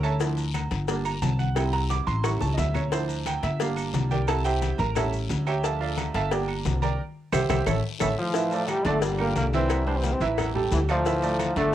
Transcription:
Already playing: upright bass D2, upright piano G3 C#4 E4
0.03 upright piano A4 C#5 E5 A5, low agogo, short guiro, claves, maracas
0.19 upright piano F3 D4 E4, cowbell, long guiro, maracas
0.37 low agogo, maracas
0.54 cowbell, high conga, low timbale, low agogo, short guiro, claves, maracas
0.71 upright bass G1, cowbell, short guiro, maracas
0.87 upright piano G3 A#3 D4, cowbell, high conga, low agogo, long guiro, maracas
1.05 upright piano A#5, high conga, low agogo, claves, maracas
1.22 upright bass C2, upright piano A5, cowbell, high conga, low timbale, low agogo, short guiro, maracas
1.39 upright piano F#5, high conga, short guiro, maracas
1.55 upright piano G3 C4 E4 G5, cowbell, high conga, low agogo, long guiro, claves, maracas
1.73 upright piano A#5, cowbell, low agogo
1.90 upright piano D6, cowbell, high conga, low timbale, short guiro, maracas
2.07 upright bass A1, upright piano C6, high conga, low agogo, short guiro, maracas
2.24 upright piano G3 C#4 E4 C#6, cowbell, high conga, low agogo, long guiro, claves, maracas
2.41 upright bass C#2, upright piano A5, low conga, maracas
2.54 upright piano D#5, low conga, low timbale, low agogo, short guiro
2.58 upright bass D2, upright piano E5, cowbell, maracas
2.74 upright piano C#5, low conga, low agogo, short guiro, claves, maracas
2.92 upright piano F3 D4 E4 C5, cowbell, high conga, long guiro, maracas
3.09 high conga, low agogo, maracas
3.26 upright piano G5, cowbell, high conga, low timbale, low agogo, short guiro, claves, maracas
3.43 upright bass G1, upright piano E5, cowbell, high conga, short guiro, maracas
3.60 upright piano G3 A#3 D4 F5, cowbell, high conga, low agogo, long guiro, maracas
3.76 high conga, low agogo, claves, maracas
3.94 upright bass C2, cowbell, high conga, low timbale, low agogo, short guiro, maracas
4.10 upright piano G4 A#4 D5 G5, high conga, short guiro, maracas
4.27 upright piano G3 C4 E4 A4 A5, cowbell, low agogo, long guiro, claves, maracas
4.45 upright piano G4 C5 E5 G5, cowbell, low agogo, maracas
4.61 cowbell, high conga, low timbale, short guiro, maracas
4.78 upright bass A1, upright piano A#4 A#5, low agogo, short guiro, maracas
4.95 upright piano G3 C#4 E4 A4 C#5 E5 A5, cowbell, high conga, low conga, low agogo, long guiro, claves, maracas
5.13 high conga, maracas
5.29 upright bass D2, cowbell, low timbale, low agogo, short guiro, maracas
5.47 upright piano G4 C#5 E5 G5, low agogo, short guiro, claves, maracas
5.63 upright piano F3 D4 A4 E5 F5 A5, cowbell, long guiro, maracas
5.80 upright piano F4 A4 D5 F5, low agogo
5.97 cowbell, high conga, low timbale, low agogo, short guiro, claves, maracas
6.14 upright bass G1, upright piano A4 E5 F5 A5, cowbell, short guiro, maracas
6.31 upright piano G3 A#3 D4 G4 A#4 D5 G5, cowbell, high conga, low agogo, long guiro, maracas
6.48 high conga, low agogo, claves
6.65 upright bass C2, cowbell, high conga, low timbale, low agogo, short guiro, maracas
6.82 upright piano A#4 D5 G5 A#5, high conga, short guiro, maracas
7.32 upright bass C2, upright piano G4 C5 E5, cowbell, high conga, high timbale, long guiro, claves, maracas
7.49 upright bass C2, upright piano G4 C5 E5, cowbell, high conga, high timbale, long guiro, claves, maracas
7.67 upright bass A1, upright piano A4 C#5 E5, cowbell, high conga, high timbale, long guiro, claves, maracas
7.99 upright bass A1, trombone section E3, upright piano A4 C#5 E5, cowbell, high conga, high timbale, long guiro, claves, maracas
8.18 trombone section A2 F3
8.34 upright piano E3 E4 E5, cowbell, maracas
8.51 upright piano A3 A4 D5, high conga, low agogo, maracas
8.68 trombone section G3, cowbell, high conga, low timbale, low agogo, short guiro, claves, maracas
8.85 upright bass G1, upright piano D3 D4 D5, trombone section A3, cowbell, short guiro, maracas
9.02 trombone section A#2 D3 G3, cowbell, low agogo, long guiro, maracas
9.18 upright piano G3 G4 A#4, trombone section A#3, low agogo, claves
9.36 upright bass C2, trombone section A#3, cowbell, high conga, low timbale, low agogo, short guiro, maracas
9.53 upright piano E3 E4 E5, trombone section E3 G3 C4, high conga, short guiro, maracas
9.70 cowbell, low agogo, long guiro, claves, maracas
9.84 upright piano G3 G4 C5, trombone section D4, cowbell, low agogo
9.94 trombone section C4
10.03 trombone section A#3, cowbell, high conga, low timbale, short guiro, maracas
10.12 trombone section C4
10.20 upright bass A1, upright piano E3 E4 E5, low agogo, short guiro, maracas
10.38 cowbell, high conga, low conga, low agogo, long guiro, claves, maracas
10.55 upright piano G3 G4 A4, high conga, low conga
10.71 upright bass D2, trombone section E3, cowbell, high conga, low timbale, low agogo, short guiro, maracas
10.89 trombone section A2 F3, upright piano A3 A4 D5, low agogo, short guiro, claves, maracas
11.06 upright piano E3 E4 E5, cowbell, long guiro, maracas
11.23 upright piano A3 A4 D5, low agogo, maracas
11.39 cowbell, high conga, low timbale, low agogo, short guiro, claves, maracas
11.56 upright bass G1, upright piano D3 D4 D5, trombone section D3 A3, cowbell, short guiro, maracas

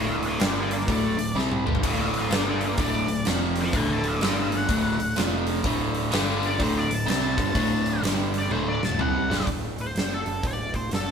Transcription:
Already playing: picked electric bass D1, overdriven electric guitar D2 A2 D3
0.09 lead electric guitar D5 F5
0.23 lead electric guitar D5, open hi-hat
0.27 lead electric guitar F5
0.40 picked electric bass G1, overdriven electric guitar G2 D3 G3, lead electric guitar F4, snare, open hi-hat
0.44 lead electric guitar D5
0.58 lead electric guitar F4 D5
0.71 lead electric guitar F4 D5, open hi-hat
0.88 picked electric bass D1, overdriven electric guitar D2 A2 D3, lead electric guitar D5, kick, open hi-hat
1.18 picked electric bass D1, overdriven electric guitar D2 A2, open hi-hat
1.35 picked electric bass C2, overdriven electric guitar C3 G3 C4, snare
1.52 high tom
1.65 picked electric bass G1, overdriven electric guitar G2 D3 G3, mid tom
1.75 floor tom
1.83 picked electric bass D1, overdriven electric guitar D2 A2 D3, lead electric guitar D5 F5, kick, open hi-hat, crash
2.00 lead electric guitar D5 F5
2.14 open hi-hat
2.19 lead electric guitar D5 F5
2.30 picked electric bass G1, overdriven electric guitar G2 D3 G3, lead electric guitar F4, snare, open hi-hat
2.35 lead electric guitar D5
2.49 lead electric guitar F4 D5
2.61 lead electric guitar F4 D5, open hi-hat
2.78 picked electric bass D1, overdriven electric guitar D2 A2 D3, lead electric guitar D5, kick, open hi-hat
3.08 picked electric bass D1, overdriven electric guitar D2 A2, open hi-hat
3.25 picked electric bass F1, overdriven electric guitar F2 C3 F3, snare, open hi-hat
3.56 open hi-hat
3.61 lead electric guitar F5 A5
3.73 picked electric bass D1, overdriven electric guitar D2 A2 D3, lead electric guitar F#5 A5, kick, open hi-hat
3.92 lead electric guitar F#5 A5
4.04 open hi-hat
4.08 lead electric guitar D5 F5
4.21 picked electric bass G1, overdriven electric guitar G2 D3 G3, lead electric guitar D5 F5, snare, open hi-hat
4.40 lead electric guitar D5 F5
4.52 open hi-hat
4.57 lead electric guitar F#5
4.68 picked electric bass D1, overdriven electric guitar D2 A2 D3, kick, open hi-hat
4.99 picked electric bass D1, overdriven electric guitar D2 A2, open hi-hat
5.16 picked electric bass F1, overdriven electric guitar F2 C3 F3, snare, open hi-hat
5.47 open hi-hat
5.64 picked electric bass D1, overdriven electric guitar D2 A2 D3, kick, open hi-hat
5.95 open hi-hat
6.12 picked electric bass G1, overdriven electric guitar G2 D3 G3, snare, open hi-hat
6.43 lead electric guitar D5, open hi-hat
6.59 picked electric bass D1, overdriven electric guitar D2 A2 D3, lead electric guitar C5, kick, open hi-hat
6.78 lead electric guitar D5
6.89 picked electric bass D1, overdriven electric guitar D2 A2, open hi-hat
6.94 lead electric guitar A5
7.06 picked electric bass C2, overdriven electric guitar C3 G3 C4, lead electric guitar A5, snare, open hi-hat
7.37 picked electric bass G1, overdriven electric guitar G2 D3 G3, kick, open hi-hat
7.54 picked electric bass D1, overdriven electric guitar D2 A2 D3, kick, open hi-hat
7.86 open hi-hat
8.02 picked electric bass G1, overdriven electric guitar G2 D3 G3, snare, open hi-hat
8.34 open hi-hat
8.38 lead electric guitar D5
8.50 picked electric bass D1, overdriven electric guitar D2 A2 D3, lead electric guitar C5, high tom
8.68 lead electric guitar D5
8.81 picked electric bass D1, overdriven electric guitar D2 A2, lead electric guitar A5, snare
8.90 mid tom
8.99 picked electric bass C2, overdriven electric guitar C3 G3 C4, lead electric guitar F#5, mid tom
9.29 picked electric bass G1, overdriven electric guitar G2 D3 G3, snare
9.40 snare
9.47 picked electric bass D1, kick, open hi-hat
9.78 picked electric bass D1, lead electric guitar C5, open hi-hat
9.95 picked electric bass F#1, snare, open hi-hat
10.14 lead electric guitar A4
10.26 picked electric bass F#1, open hi-hat
10.43 picked electric bass D1, lead electric guitar D5, kick, open hi-hat
10.74 picked electric bass D1, lead electric guitar C5, kick, open hi-hat
10.91 picked electric bass F#1, lead electric guitar A4, snare, open hi-hat

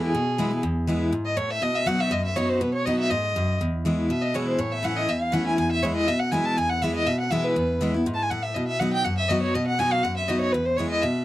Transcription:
Already playing: steel-string acoustic guitar E2 E3 G#3 B3 E4
0.02 fiddle G#4
0.15 steel-string acoustic guitar B2
0.38 steel-string acoustic guitar E3 G#3 B3 E4
0.51 steel-string acoustic guitar B3 E4
0.63 steel-string acoustic guitar E2
0.87 steel-string acoustic guitar E3 G#3 B3 E4
1.12 steel-string acoustic guitar G#2
1.26 fiddle D#5
1.37 steel-string acoustic guitar A2, fiddle C#5
1.50 fiddle E5
1.62 steel-string acoustic guitar B2, fiddle D#5
1.75 fiddle E5
1.86 steel-string acoustic guitar F#3 B3 D#4 F#4, fiddle F#5
2.00 fiddle E5
2.11 steel-string acoustic guitar F#2, fiddle D#5
2.25 fiddle E5
2.36 steel-string acoustic guitar F#3 B3 D#4 F#4, fiddle C#5
2.49 fiddle C5
2.61 steel-string acoustic guitar B2, fiddle B4
2.74 fiddle C#5
2.86 steel-string acoustic guitar F#3 B3 D#4 F#4, fiddle D#5
2.99 fiddle E5
3.10 steel-string acoustic guitar G#2, fiddle D#5
3.36 steel-string acoustic guitar F#2
3.61 steel-string acoustic guitar E2
3.85 steel-string acoustic guitar E3 G#3 B3 E4
4.09 steel-string acoustic guitar B2, fiddle E5
4.22 fiddle D#5
4.34 steel-string acoustic guitar E3 G#3 B3 E4, fiddle C#5
4.49 fiddle C5
4.59 steel-string acoustic guitar A2, fiddle C#5
4.72 fiddle E5
4.83 steel-string acoustic guitar E3 A3 C#4 E4, fiddle F#5
4.97 fiddle D#5
5.08 steel-string acoustic guitar E2, fiddle E5
5.22 fiddle F5
5.32 steel-string acoustic guitar E3 A3 C#4 E4, fiddle F#5
5.46 fiddle G#5
5.58 steel-string acoustic guitar E2, fiddle G#5
5.71 fiddle E5
5.82 steel-string acoustic guitar E3 G#3 B3 E4, fiddle C#5
5.96 fiddle D#5
6.08 steel-string acoustic guitar B2, fiddle E5
6.20 fiddle F#5
6.32 steel-string acoustic guitar E3 G#3 B3 E4, fiddle G#5
6.45 fiddle A5
6.57 steel-string acoustic guitar E2, fiddle G#5
6.70 fiddle F#5
6.82 steel-string acoustic guitar E3 G#3 B3 E4, fiddle E5
6.95 fiddle D#5
7.06 steel-string acoustic guitar B2, fiddle E5
7.20 fiddle F#5
7.31 steel-string acoustic guitar E3 G#3 B3 E4, fiddle E5
7.44 fiddle B4
7.56 steel-string acoustic guitar E2
7.81 steel-string acoustic guitar E3 G#3 B3 E4
7.94 steel-string acoustic guitar B3 E4
8.06 steel-string acoustic guitar G#2
8.14 fiddle A5
8.23 fiddle G#5
8.30 steel-string acoustic guitar A2, fiddle F#5
8.43 fiddle E5
8.55 steel-string acoustic guitar B2, fiddle D#5
8.67 fiddle E5
8.80 steel-string acoustic guitar F#3 B3 D#4 F#4, fiddle F#5
8.93 fiddle G5
9.05 steel-string acoustic guitar F#2, fiddle F#5
9.18 fiddle E5
9.29 steel-string acoustic guitar F#3 B3 D#4 F#4, fiddle D#5
9.42 fiddle C#5
9.54 steel-string acoustic guitar B2, fiddle D#5
9.67 fiddle F#5
9.79 steel-string acoustic guitar F#3 B3 D#4 F#4, fiddle G#5
9.92 fiddle F5
10.03 steel-string acoustic guitar F#2, fiddle F#5
10.17 fiddle E5
10.28 steel-string acoustic guitar F#3 B3 D#4 F#4, fiddle D#5
10.40 fiddle C#5
10.52 steel-string acoustic guitar E2, fiddle B4
10.65 fiddle C5
10.77 steel-string acoustic guitar E3 G#3 B3 E4, fiddle C#5
10.90 fiddle D#5
11.02 steel-string acoustic guitar B2, fiddle E5

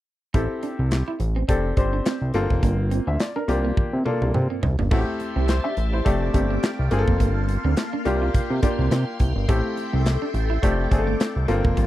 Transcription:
0.34 analog synth bass A1, grand piano C4 E4 G4 A4, clean electric guitar C4, kick, closed hi-hat
0.63 clean electric guitar D4, closed hi-hat
0.79 analog synth bass C2, muted clean electric guitar stroke
0.91 snare, clap, closed hi-hat
1.08 clean electric guitar E4
1.20 analog synth bass A1, muted clean electric guitar stroke, closed hi-hat
1.36 clean electric guitar C4
1.48 analog synth bass F1, grand piano C4 D4 G4 A4, muted clean electric guitar stroke, kick, closed hi-hat
1.77 analog synth bass G1, grand piano C4 D4 G4 C5, clean electric guitar C4, kick, closed hi-hat
1.93 clean electric guitar D4
2.06 clean electric guitar C4, snare, clap, closed hi-hat
2.22 analog synth bass C2
2.34 analog synth bass G1, grand piano A#3 C4 F4 A4, muted clean electric guitar stroke, closed hi-hat
2.50 analog synth bass F1, clean electric guitar A#3, kick
2.63 analog synth bass G1, clean electric guitar A#3, kick, closed hi-hat
2.91 clean electric guitar C4, closed hi-hat
3.07 analog synth bass D2, grand piano E5, muted clean electric guitar stroke
3.20 grand piano D5, snare, clap, closed hi-hat
3.36 clean electric guitar D4, grand piano A#4
3.48 analog synth bass C2, grand piano A#3 D4 F4 G4, muted clean electric guitar stroke, closed hi-hat
3.65 clean electric guitar A#3
3.77 analog synth bass C3, kick, high tom
3.93 analog synth bass C3
4.05 grand piano A#3 D4 F4 A4, clean electric guitar A#3, mid tom
4.22 analog synth bass C2, mid tom
4.34 analog synth bass C3, mid tom
4.50 clean electric guitar C4
4.63 analog synth bass C2, muted clean electric guitar stroke, floor tom
4.79 analog synth bass G1, clean electric guitar A#3, floor tom
4.91 analog synth bass A1, grand piano A3 C4 E4 F#4, clean electric guitar A3, string machine G4 E5 A5 C6, kick, crash
4.98 grand piano G4
5.20 muted clean electric guitar stroke, closed hi-hat
5.36 analog synth bass C2, clean electric guitar C4
5.48 grand piano C5, snare, clap, closed hi-hat
5.64 clean electric guitar D4, grand piano E5
5.77 analog synth bass A1, muted clean electric guitar stroke, closed hi-hat
5.93 clean electric guitar E4, grand piano C5
6.05 analog synth bass F1, grand piano A3 C4 D4 G4, string machine F5 D6, muted clean electric guitar stroke, kick, closed hi-hat
6.33 analog synth bass G1, grand piano A3 C4 D4 G4, clean electric guitar C4, kick, closed hi-hat
6.50 clean electric guitar A3
6.63 muted clean electric guitar stroke, snare, clap, closed hi-hat
6.79 analog synth bass C2
6.91 analog synth bass G1, string machine A#3 A5 C6, grand piano A#3 C4 F4 G#4, clean electric guitar A#3, closed hi-hat
6.98 grand piano A4
7.07 analog synth bass F1, clean electric guitar A#3, kick
7.20 analog synth bass G1, clean electric guitar A#3, kick, closed hi-hat
7.49 muted clean electric guitar stroke, closed hi-hat
7.65 analog synth bass D2, clean electric guitar C4
7.77 snare, clap, closed hi-hat
7.93 clean electric guitar D4
8.05 analog synth bass C2, grand piano A#3 D4 F4 G4, string machine G5, muted clean electric guitar stroke, closed hi-hat
8.22 clean electric guitar F4
8.34 analog synth bass C3, muted clean electric guitar stroke, kick, closed hi-hat
8.50 analog synth bass C3
8.63 grand piano A#3 D4 F4 G4, clean electric guitar D4, kick, closed hi-hat
8.79 analog synth bass C2, clean electric guitar C4
8.91 analog synth bass C3, snare, clap, closed hi-hat
9.20 analog synth bass C2, clean electric guitar A#3, kick, closed hi-hat
9.36 analog synth bass G1
9.48 analog synth bass A1, grand piano A3 C4 E4 G4, clean electric guitar A3, string machine A4 E5, kick, closed hi-hat
9.77 muted clean electric guitar stroke, closed hi-hat
9.93 analog synth bass C2, clean electric guitar C4
10.06 snare, clap, closed hi-hat
10.22 clean electric guitar D4
10.34 analog synth bass A1, muted clean electric guitar stroke, closed hi-hat
10.50 clean electric guitar E4
10.62 analog synth bass F1, grand piano A3 C4 D4 G4, string machine F5 D6, muted clean electric guitar stroke, kick, closed hi-hat
10.91 analog synth bass G1, grand piano A3 C4 D4 G#4, clean electric guitar C4, kick, closed hi-hat
10.98 grand piano A4
11.07 clean electric guitar A3
11.20 muted clean electric guitar stroke, snare, clap, closed hi-hat
11.36 analog synth bass C2
11.48 analog synth bass G1, grand piano A#3 C4 F4 A4, clean electric guitar A#3, string machine A#3 F5 A5 C6, closed hi-hat
11.64 analog synth bass F1, clean electric guitar A#3, kick
11.77 analog synth bass G1, clean electric guitar A#3, kick, closed hi-hat

